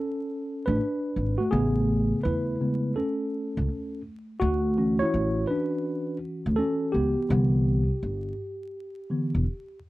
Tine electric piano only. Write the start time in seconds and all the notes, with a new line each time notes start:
Already playing: C#4 A4
0.66 D4 B4
1.38 A3 F#4
1.51 C#3 A3 B3 G#4
2.23 E4 B4
2.61 C#3 G#3 B3
2.96 C#4 A4
4.40 A3 F#4
4.77 E3 C#4 F#4
4.99 E4 C#5
5.47 D4 B4
6.56 C#4 A4
6.92 B3 G4
7.29 D3 E3 B3
9.10 D3 E3 B3